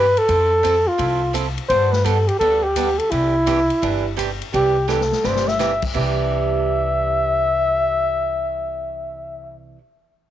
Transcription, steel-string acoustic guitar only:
0.28 F3 C4 E4 A4
0.63 F3 C4 E4 A4
0.98 F3 C4 E4 A4
1.33 F3 C4 E4 A4
1.70 G3 B3 D4 A4
2.04 G3 B3 D4 A4
2.41 G3 B3 D4 A4
2.76 G3 B3 D4 A4
3.12 C3 E3 D4 G4
3.46 C3 E3 D4 G4
3.82 C3 E3 D4 G4
4.17 C3 E3 D4 G4
4.53 C3 E3 D4 G4
4.88 C3 E3 D4 G4
5.24 C3 E3 D4 G4
5.59 C3 E3 D4 G4
5.94 C3 E3 D4 G4

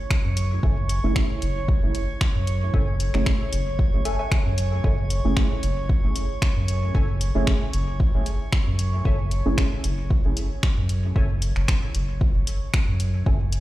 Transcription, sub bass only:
0.24 F#2
0.63 F#1
1.04 F#1
1.42 F#1
1.83 F#1
2.35 F#2
2.74 F#1
3.14 F#1
3.53 F#1
3.93 F#1
4.46 F#2
4.84 F#1
5.24 F#1
5.63 F#1
6.03 F#1
6.56 F#2
6.95 F#1
7.35 F#1
7.74 F#1
8.14 F#1
8.67 F#2
9.05 F#1
9.46 F#1
9.84 F#1
10.25 F#1
10.77 F#2
11.16 F#1
11.56 F#1
11.95 F#1
12.35 F#1
12.88 F#2
13.26 F#1

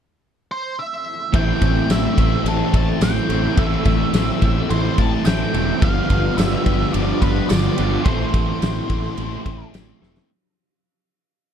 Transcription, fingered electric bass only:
1.34 A1
1.62 A1
1.89 A1
2.18 A1
2.44 A1
2.74 A1
3.01 A1
3.29 A1
3.58 A1
3.86 A1
4.13 A1
4.42 A1
4.70 A1
4.98 A1
5.26 A1
5.54 E1
5.82 G1
6.10 G1
6.38 G1
6.66 G1
6.94 G1
7.22 G1
7.51 G1
7.79 G1
8.06 A1
8.34 A1
8.62 A1
8.90 A1
9.18 A1
9.46 A1
9.75 A1
10.02 E1

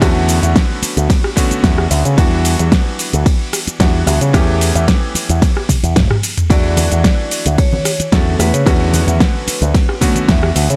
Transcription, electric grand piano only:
0.01 D3 A3 B3 C#4 F#4
1.36 D3 A3 B3 C#4 F#4
2.17 E3 G3 B3 D4 F#4
3.80 E3 G3 B3 D4 F#4
4.33 E3 A3 B3 C#4 G4
6.50 E3 A3 D4 F#4
8.12 D3 A3 B3 C#4 F#4
8.66 D3 A3 B3 C#4 F#4
10.01 D3 A3 B3 C#4 F#4

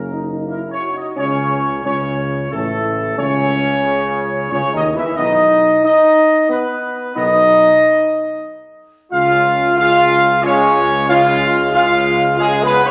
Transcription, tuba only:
Already playing: F#1
1.18 C#2
1.85 C#2
2.52 A1
3.18 C#2
4.52 C#2
4.74 D#2
4.96 E2
5.18 B1
7.17 B1
9.13 C#2

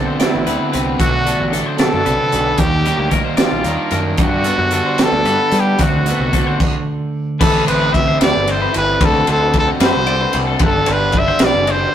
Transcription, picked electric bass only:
0.35 A1
0.47 D2
0.75 C2
1.00 B1
1.40 A1
1.94 F#2
2.06 B1
2.34 B1
2.59 D#2
2.99 D2
3.52 A#1
3.64 D#2
3.92 F#2
4.18 G2
4.58 F#2
5.12 D2
5.25 G2
5.52 G3
5.80 D2
6.19 C2
7.41 A1
7.68 A1
8.21 D2
8.35 G1
8.76 G1
9.01 D2
9.28 D2
9.80 F#2
9.94 C2
10.34 C2
10.60 G1
10.88 G1
11.41 B1
11.54 F#1

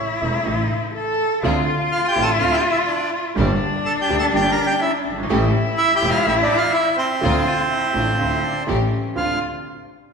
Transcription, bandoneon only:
1.92 F4 F5
2.08 G4 G5
2.22 A4 A5
2.39 F4 F5
2.54 G4 G5
2.70 E4 E5
2.86 D4 D5
3.85 A4 A5
4.01 G4 G5
4.19 A4 A5
4.35 G4 G5
4.51 A#4 A#5
4.66 G4 G5
4.81 E4 E5
5.77 E4 E5
5.95 G4 G5
6.09 F4 F5
6.27 E4 E5
6.42 D4 D5
6.57 F4 F5
6.71 E4 E5
6.96 C4 C5
9.17 F5

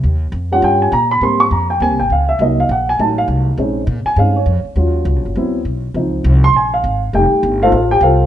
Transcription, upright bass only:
0.03 D#2
0.32 F2
0.62 G2
0.92 A#2
1.21 G#2
1.51 F2
1.80 D#2
1.91 C2
2.00 G#1
2.10 C#2
2.39 C2
2.69 A#1
2.99 A1
3.28 C2
3.57 A#1
3.87 A#2
4.05 muted upright bass stroke
4.16 G2
4.46 F2
4.65 muted upright bass stroke
4.76 D#2
5.05 C#2
5.16 A#1
5.26 F#1
5.35 D2
5.65 B1
5.94 C#2
6.24 C2
6.53 A#1
6.84 G#1
7.13 F1
7.32 muted upright bass stroke
7.43 G1
7.72 A1
8.01 C2

